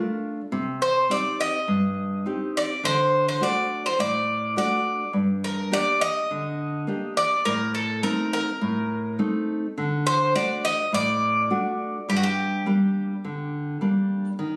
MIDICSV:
0, 0, Header, 1, 3, 480
1, 0, Start_track
1, 0, Key_signature, -2, "minor"
1, 0, Tempo, 578035
1, 432, Time_signature, 4, 2, 24, 8
1, 12094, End_track
2, 0, Start_track
2, 0, Title_t, "Bouzouki"
2, 0, Program_c, 0, 25
2, 681, Note_on_c, 0, 72, 74
2, 900, Note_off_c, 0, 72, 0
2, 923, Note_on_c, 0, 74, 93
2, 1141, Note_off_c, 0, 74, 0
2, 1167, Note_on_c, 0, 75, 94
2, 2132, Note_off_c, 0, 75, 0
2, 2135, Note_on_c, 0, 74, 85
2, 2348, Note_off_c, 0, 74, 0
2, 2368, Note_on_c, 0, 72, 89
2, 2696, Note_off_c, 0, 72, 0
2, 2728, Note_on_c, 0, 72, 75
2, 2832, Note_off_c, 0, 72, 0
2, 2848, Note_on_c, 0, 74, 78
2, 3176, Note_off_c, 0, 74, 0
2, 3205, Note_on_c, 0, 72, 76
2, 3311, Note_off_c, 0, 72, 0
2, 3322, Note_on_c, 0, 74, 89
2, 3765, Note_off_c, 0, 74, 0
2, 3804, Note_on_c, 0, 74, 70
2, 4245, Note_off_c, 0, 74, 0
2, 4520, Note_on_c, 0, 70, 71
2, 4761, Note_on_c, 0, 74, 92
2, 4764, Note_off_c, 0, 70, 0
2, 4981, Note_off_c, 0, 74, 0
2, 4994, Note_on_c, 0, 75, 88
2, 5921, Note_off_c, 0, 75, 0
2, 5955, Note_on_c, 0, 74, 84
2, 6189, Note_on_c, 0, 70, 86
2, 6202, Note_off_c, 0, 74, 0
2, 6415, Note_off_c, 0, 70, 0
2, 6432, Note_on_c, 0, 69, 65
2, 6666, Note_off_c, 0, 69, 0
2, 6670, Note_on_c, 0, 70, 71
2, 6909, Note_off_c, 0, 70, 0
2, 6919, Note_on_c, 0, 70, 69
2, 7605, Note_off_c, 0, 70, 0
2, 8359, Note_on_c, 0, 72, 82
2, 8581, Note_off_c, 0, 72, 0
2, 8599, Note_on_c, 0, 74, 88
2, 8821, Note_off_c, 0, 74, 0
2, 8841, Note_on_c, 0, 75, 94
2, 9062, Note_off_c, 0, 75, 0
2, 9088, Note_on_c, 0, 74, 92
2, 10044, Note_on_c, 0, 67, 74
2, 10071, Note_off_c, 0, 74, 0
2, 10095, Note_off_c, 0, 67, 0
2, 10101, Note_on_c, 0, 66, 66
2, 10157, Note_off_c, 0, 66, 0
2, 10159, Note_on_c, 0, 67, 79
2, 11685, Note_off_c, 0, 67, 0
2, 12094, End_track
3, 0, Start_track
3, 0, Title_t, "Nylon-string guitar"
3, 0, Program_c, 1, 24
3, 0, Note_on_c, 1, 57, 46
3, 0, Note_on_c, 1, 62, 39
3, 0, Note_on_c, 1, 65, 45
3, 336, Note_off_c, 1, 57, 0
3, 337, Note_off_c, 1, 62, 0
3, 337, Note_off_c, 1, 65, 0
3, 433, Note_on_c, 1, 48, 64
3, 898, Note_off_c, 1, 48, 0
3, 909, Note_on_c, 1, 60, 49
3, 913, Note_on_c, 1, 63, 45
3, 918, Note_on_c, 1, 67, 56
3, 1295, Note_off_c, 1, 60, 0
3, 1296, Note_off_c, 1, 63, 0
3, 1300, Note_off_c, 1, 67, 0
3, 1394, Note_on_c, 1, 43, 65
3, 1859, Note_off_c, 1, 43, 0
3, 1874, Note_on_c, 1, 60, 43
3, 1877, Note_on_c, 1, 63, 43
3, 1882, Note_on_c, 1, 67, 51
3, 2257, Note_off_c, 1, 60, 0
3, 2260, Note_off_c, 1, 63, 0
3, 2261, Note_off_c, 1, 67, 0
3, 2354, Note_on_c, 1, 50, 58
3, 2819, Note_off_c, 1, 50, 0
3, 2829, Note_on_c, 1, 57, 46
3, 2829, Note_on_c, 1, 62, 45
3, 2835, Note_on_c, 1, 66, 53
3, 3214, Note_off_c, 1, 62, 0
3, 3215, Note_off_c, 1, 57, 0
3, 3218, Note_off_c, 1, 66, 0
3, 3313, Note_on_c, 1, 45, 67
3, 3779, Note_off_c, 1, 45, 0
3, 3787, Note_on_c, 1, 57, 43
3, 3789, Note_on_c, 1, 62, 41
3, 3794, Note_on_c, 1, 66, 49
3, 4174, Note_off_c, 1, 57, 0
3, 4174, Note_off_c, 1, 62, 0
3, 4178, Note_off_c, 1, 66, 0
3, 4263, Note_on_c, 1, 43, 60
3, 4734, Note_off_c, 1, 43, 0
3, 4744, Note_on_c, 1, 58, 49
3, 4749, Note_on_c, 1, 62, 44
3, 4751, Note_on_c, 1, 67, 51
3, 5133, Note_off_c, 1, 58, 0
3, 5134, Note_off_c, 1, 62, 0
3, 5136, Note_off_c, 1, 67, 0
3, 5238, Note_on_c, 1, 50, 67
3, 5702, Note_off_c, 1, 50, 0
3, 5706, Note_on_c, 1, 58, 45
3, 5713, Note_on_c, 1, 62, 40
3, 5717, Note_on_c, 1, 67, 49
3, 6094, Note_off_c, 1, 58, 0
3, 6098, Note_off_c, 1, 62, 0
3, 6100, Note_off_c, 1, 67, 0
3, 6192, Note_on_c, 1, 45, 64
3, 6659, Note_off_c, 1, 45, 0
3, 6665, Note_on_c, 1, 57, 46
3, 6670, Note_on_c, 1, 60, 43
3, 6674, Note_on_c, 1, 63, 54
3, 7054, Note_off_c, 1, 57, 0
3, 7055, Note_off_c, 1, 60, 0
3, 7059, Note_off_c, 1, 63, 0
3, 7154, Note_on_c, 1, 45, 70
3, 7621, Note_off_c, 1, 45, 0
3, 7630, Note_on_c, 1, 57, 44
3, 7633, Note_on_c, 1, 60, 41
3, 7635, Note_on_c, 1, 63, 51
3, 8017, Note_off_c, 1, 57, 0
3, 8018, Note_off_c, 1, 60, 0
3, 8020, Note_off_c, 1, 63, 0
3, 8118, Note_on_c, 1, 50, 63
3, 8583, Note_off_c, 1, 50, 0
3, 8591, Note_on_c, 1, 57, 46
3, 8593, Note_on_c, 1, 62, 43
3, 8599, Note_on_c, 1, 66, 52
3, 8979, Note_off_c, 1, 57, 0
3, 8979, Note_off_c, 1, 62, 0
3, 8980, Note_off_c, 1, 66, 0
3, 9072, Note_on_c, 1, 45, 69
3, 9540, Note_off_c, 1, 45, 0
3, 9552, Note_on_c, 1, 57, 45
3, 9556, Note_on_c, 1, 62, 44
3, 9556, Note_on_c, 1, 66, 48
3, 9938, Note_off_c, 1, 57, 0
3, 9940, Note_off_c, 1, 62, 0
3, 9941, Note_off_c, 1, 66, 0
3, 10036, Note_on_c, 1, 43, 62
3, 10502, Note_off_c, 1, 43, 0
3, 10514, Note_on_c, 1, 55, 50
3, 10518, Note_on_c, 1, 58, 43
3, 10523, Note_on_c, 1, 62, 51
3, 10899, Note_off_c, 1, 55, 0
3, 10902, Note_off_c, 1, 58, 0
3, 10903, Note_off_c, 1, 62, 0
3, 10999, Note_on_c, 1, 50, 66
3, 11463, Note_off_c, 1, 50, 0
3, 11468, Note_on_c, 1, 55, 43
3, 11473, Note_on_c, 1, 58, 41
3, 11475, Note_on_c, 1, 62, 44
3, 11855, Note_off_c, 1, 55, 0
3, 11857, Note_off_c, 1, 58, 0
3, 11859, Note_off_c, 1, 62, 0
3, 11948, Note_on_c, 1, 51, 68
3, 12094, Note_off_c, 1, 51, 0
3, 12094, End_track
0, 0, End_of_file